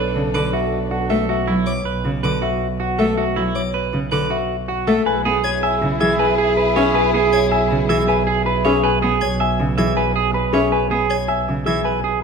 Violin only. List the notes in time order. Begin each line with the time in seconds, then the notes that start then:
0.34 D6
1.10 E5
1.66 D6
2.23 D6
2.99 E5
3.55 D6
4.11 D6
4.87 E5
5.44 G#6
6.01 G#6
6.76 E5
7.33 G#6
7.89 G#6
8.65 E5
9.21 G#6
9.78 G#6
10.53 E5
11.10 G#6
11.67 G#6